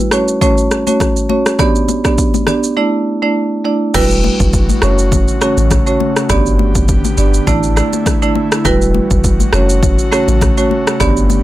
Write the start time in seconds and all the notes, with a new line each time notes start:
0.11 A3 C#4 F#4 C#5, cross-stick, shaker
0.28 shaker
0.41 A3 C#4 F#4 C#5, kick, low conga, shaker
0.58 shaker
0.71 cross-stick, shaker
0.87 A3 C#4 F#4 C#5, high conga, shaker
1.00 kick, cross-stick, low conga, shaker
1.16 shaker
1.29 A3 C#4 F#4 C#5, high conga
1.46 cross-stick, shaker
1.59 B3 D4 G4 D5, kick, cross-stick, low conga, shaker
1.76 shaker
1.89 high conga, shaker
2.04 B3 D4 G4 D5, kick, cross-stick, shaker
2.18 kick, shaker
2.34 high conga, shaker
2.47 B3 D4 G4 D5, cross-stick, low conga, shaker
2.63 shaker
2.77 A3 D4 E4 D5
3.22 A3 D4 E4 D5
3.65 A3 D4 E4 D5
3.94 E1 E3 G3 E4 F#4 B4, kick, cross-stick, crash, low conga, shaker
4.11 shaker
4.24 high conga
4.40 F#1, kick, shaker
4.53 kick, shaker
4.69 high conga, shaker
4.82 F#1 C#3 A3 C#4 F#4 C#5, cross-stick, shaker
4.98 shaker
5.12 kick, low conga, shaker
5.28 shaker
5.41 A3 C#4 F#4 C#5, cross-stick, shaker
5.58 A1, high conga, shaker
5.71 kick, cross-stick, low conga, shaker
5.87 A3 C#4 F#4 C#5, shaker
6.00 high conga
6.17 cross-stick, shaker
6.29 G1 D3 B3 D4 G4 D5, kick, cross-stick, low conga, shaker
6.46 shaker
6.59 high conga
6.75 kick, shaker
6.88 kick, shaker
7.05 high conga, shaker
7.18 G1 B3 D4 G4 D5, shaker
7.34 shaker
7.47 A1 A3 D4 E4 D5, kick, low conga, shaker
7.63 shaker
7.76 A3 D4 E4 D5, cross-stick, shaker
7.93 high conga, shaker
8.06 kick, cross-stick, low conga, shaker
8.22 A3 D4 E4 D5, shaker
8.35 high conga
8.52 cross-stick, shaker
8.65 E1 E3 G3 E4 F#4 B4, kick, cross-stick, low conga, shaker
8.82 shaker
8.94 high conga
9.11 F#1, kick, shaker
9.24 kick, shaker
9.40 high conga, shaker
9.53 F#1 C#3 A3 C#4 F#4 C#5, cross-stick, shaker
9.69 shaker
9.83 kick, low conga, shaker
9.99 shaker
10.12 A3 C#4 F#4 C#5, cross-stick, shaker
10.28 A1, high conga, shaker
10.41 kick, cross-stick, low conga, shaker
10.57 A3 C#4 F#4 C#5, shaker
10.71 high conga
10.87 cross-stick, shaker
11.00 G1 D3 B3 D4 G4 D5, kick, cross-stick, low conga, shaker
11.17 shaker
11.30 high conga, shaker